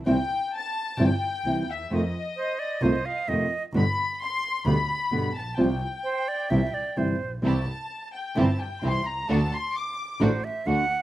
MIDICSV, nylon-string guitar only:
0, 0, Header, 1, 2, 480
1, 0, Start_track
1, 0, Tempo, 461184
1, 68, Time_signature, 4, 2, 24, 8
1, 11470, End_track
2, 0, Start_track
2, 0, Title_t, "Nylon-string guitar"
2, 0, Program_c, 0, 24
2, 58, Note_on_c, 0, 52, 73
2, 59, Note_on_c, 0, 48, 75
2, 66, Note_on_c, 0, 55, 70
2, 71, Note_on_c, 0, 60, 70
2, 71, Note_on_c, 0, 64, 76
2, 157, Note_off_c, 0, 48, 0
2, 157, Note_off_c, 0, 52, 0
2, 161, Note_off_c, 0, 55, 0
2, 164, Note_off_c, 0, 60, 0
2, 164, Note_off_c, 0, 64, 0
2, 1027, Note_on_c, 0, 48, 72
2, 1035, Note_on_c, 0, 55, 77
2, 1036, Note_on_c, 0, 52, 79
2, 1043, Note_on_c, 0, 60, 88
2, 1043, Note_on_c, 0, 64, 74
2, 1121, Note_off_c, 0, 48, 0
2, 1125, Note_off_c, 0, 55, 0
2, 1126, Note_off_c, 0, 52, 0
2, 1129, Note_off_c, 0, 60, 0
2, 1129, Note_off_c, 0, 64, 0
2, 1511, Note_on_c, 0, 48, 61
2, 1516, Note_on_c, 0, 52, 56
2, 1523, Note_on_c, 0, 55, 58
2, 1524, Note_on_c, 0, 60, 64
2, 1528, Note_on_c, 0, 64, 60
2, 1685, Note_off_c, 0, 48, 0
2, 1687, Note_off_c, 0, 52, 0
2, 1691, Note_off_c, 0, 55, 0
2, 1691, Note_off_c, 0, 60, 0
2, 1693, Note_off_c, 0, 64, 0
2, 1979, Note_on_c, 0, 48, 74
2, 1985, Note_on_c, 0, 51, 71
2, 1988, Note_on_c, 0, 57, 76
2, 1993, Note_on_c, 0, 60, 81
2, 1998, Note_on_c, 0, 65, 80
2, 2075, Note_off_c, 0, 48, 0
2, 2078, Note_off_c, 0, 51, 0
2, 2079, Note_off_c, 0, 57, 0
2, 2081, Note_off_c, 0, 60, 0
2, 2084, Note_off_c, 0, 65, 0
2, 2929, Note_on_c, 0, 48, 78
2, 2933, Note_on_c, 0, 51, 76
2, 2940, Note_on_c, 0, 57, 77
2, 2942, Note_on_c, 0, 60, 85
2, 2945, Note_on_c, 0, 65, 77
2, 3027, Note_off_c, 0, 48, 0
2, 3029, Note_off_c, 0, 51, 0
2, 3032, Note_off_c, 0, 57, 0
2, 3033, Note_off_c, 0, 60, 0
2, 3035, Note_off_c, 0, 65, 0
2, 3412, Note_on_c, 0, 48, 62
2, 3416, Note_on_c, 0, 51, 57
2, 3422, Note_on_c, 0, 57, 61
2, 3426, Note_on_c, 0, 60, 66
2, 3427, Note_on_c, 0, 65, 61
2, 3591, Note_off_c, 0, 48, 0
2, 3592, Note_off_c, 0, 51, 0
2, 3596, Note_off_c, 0, 57, 0
2, 3598, Note_off_c, 0, 60, 0
2, 3598, Note_off_c, 0, 65, 0
2, 3894, Note_on_c, 0, 47, 72
2, 3895, Note_on_c, 0, 55, 82
2, 3899, Note_on_c, 0, 50, 76
2, 3899, Note_on_c, 0, 59, 80
2, 3904, Note_on_c, 0, 67, 77
2, 3988, Note_off_c, 0, 47, 0
2, 3989, Note_off_c, 0, 55, 0
2, 3991, Note_off_c, 0, 50, 0
2, 3991, Note_off_c, 0, 59, 0
2, 3993, Note_off_c, 0, 67, 0
2, 4846, Note_on_c, 0, 47, 75
2, 4849, Note_on_c, 0, 50, 80
2, 4856, Note_on_c, 0, 55, 78
2, 4856, Note_on_c, 0, 59, 87
2, 4862, Note_on_c, 0, 67, 84
2, 4943, Note_off_c, 0, 47, 0
2, 4945, Note_off_c, 0, 50, 0
2, 4948, Note_off_c, 0, 55, 0
2, 4948, Note_off_c, 0, 59, 0
2, 4951, Note_off_c, 0, 67, 0
2, 5322, Note_on_c, 0, 47, 65
2, 5328, Note_on_c, 0, 50, 62
2, 5332, Note_on_c, 0, 55, 65
2, 5336, Note_on_c, 0, 59, 63
2, 5336, Note_on_c, 0, 67, 66
2, 5504, Note_off_c, 0, 47, 0
2, 5507, Note_off_c, 0, 50, 0
2, 5509, Note_off_c, 0, 55, 0
2, 5511, Note_off_c, 0, 59, 0
2, 5511, Note_off_c, 0, 67, 0
2, 5795, Note_on_c, 0, 48, 75
2, 5804, Note_on_c, 0, 53, 69
2, 5808, Note_on_c, 0, 55, 76
2, 5811, Note_on_c, 0, 60, 82
2, 5812, Note_on_c, 0, 65, 81
2, 5897, Note_off_c, 0, 48, 0
2, 5901, Note_off_c, 0, 53, 0
2, 5904, Note_off_c, 0, 55, 0
2, 5905, Note_off_c, 0, 60, 0
2, 5906, Note_off_c, 0, 65, 0
2, 6767, Note_on_c, 0, 48, 71
2, 6771, Note_on_c, 0, 52, 78
2, 6774, Note_on_c, 0, 55, 77
2, 6779, Note_on_c, 0, 60, 80
2, 6779, Note_on_c, 0, 64, 86
2, 6865, Note_off_c, 0, 48, 0
2, 6867, Note_off_c, 0, 52, 0
2, 6868, Note_off_c, 0, 55, 0
2, 6871, Note_off_c, 0, 60, 0
2, 6871, Note_off_c, 0, 64, 0
2, 7249, Note_on_c, 0, 48, 54
2, 7252, Note_on_c, 0, 55, 58
2, 7253, Note_on_c, 0, 52, 57
2, 7255, Note_on_c, 0, 60, 64
2, 7260, Note_on_c, 0, 64, 62
2, 7431, Note_off_c, 0, 48, 0
2, 7432, Note_off_c, 0, 55, 0
2, 7433, Note_off_c, 0, 52, 0
2, 7434, Note_off_c, 0, 60, 0
2, 7436, Note_off_c, 0, 64, 0
2, 7722, Note_on_c, 0, 48, 65
2, 7722, Note_on_c, 0, 52, 74
2, 7725, Note_on_c, 0, 55, 73
2, 7731, Note_on_c, 0, 60, 78
2, 7735, Note_on_c, 0, 64, 70
2, 7825, Note_off_c, 0, 48, 0
2, 7825, Note_off_c, 0, 52, 0
2, 7826, Note_off_c, 0, 55, 0
2, 7829, Note_off_c, 0, 60, 0
2, 7831, Note_off_c, 0, 64, 0
2, 8690, Note_on_c, 0, 48, 70
2, 8697, Note_on_c, 0, 52, 73
2, 8697, Note_on_c, 0, 55, 83
2, 8704, Note_on_c, 0, 60, 87
2, 8707, Note_on_c, 0, 64, 87
2, 8791, Note_off_c, 0, 48, 0
2, 8794, Note_off_c, 0, 52, 0
2, 8794, Note_off_c, 0, 55, 0
2, 8798, Note_off_c, 0, 60, 0
2, 8799, Note_off_c, 0, 64, 0
2, 9175, Note_on_c, 0, 48, 57
2, 9181, Note_on_c, 0, 52, 55
2, 9186, Note_on_c, 0, 55, 65
2, 9189, Note_on_c, 0, 60, 63
2, 9191, Note_on_c, 0, 64, 66
2, 9357, Note_off_c, 0, 48, 0
2, 9360, Note_off_c, 0, 52, 0
2, 9363, Note_off_c, 0, 55, 0
2, 9364, Note_off_c, 0, 60, 0
2, 9365, Note_off_c, 0, 64, 0
2, 9661, Note_on_c, 0, 50, 71
2, 9664, Note_on_c, 0, 57, 70
2, 9667, Note_on_c, 0, 62, 76
2, 9674, Note_on_c, 0, 66, 83
2, 9757, Note_off_c, 0, 50, 0
2, 9759, Note_off_c, 0, 57, 0
2, 9760, Note_off_c, 0, 62, 0
2, 9764, Note_off_c, 0, 66, 0
2, 10613, Note_on_c, 0, 50, 81
2, 10623, Note_on_c, 0, 57, 81
2, 10628, Note_on_c, 0, 62, 83
2, 10629, Note_on_c, 0, 66, 96
2, 10713, Note_off_c, 0, 50, 0
2, 10718, Note_off_c, 0, 57, 0
2, 10721, Note_off_c, 0, 62, 0
2, 10721, Note_off_c, 0, 66, 0
2, 11090, Note_on_c, 0, 50, 67
2, 11096, Note_on_c, 0, 57, 60
2, 11101, Note_on_c, 0, 62, 65
2, 11108, Note_on_c, 0, 66, 64
2, 11275, Note_off_c, 0, 50, 0
2, 11278, Note_off_c, 0, 57, 0
2, 11280, Note_off_c, 0, 62, 0
2, 11284, Note_off_c, 0, 66, 0
2, 11470, End_track
0, 0, End_of_file